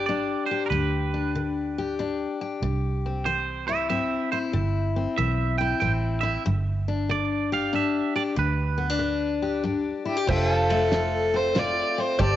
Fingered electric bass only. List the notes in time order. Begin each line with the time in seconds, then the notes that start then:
Already playing: G1
0.71 D2
2.62 C2
4.54 G1
5.18 B1
5.82 A1
6.46 G1
8.37 D2
10.29 F1
12.19 G1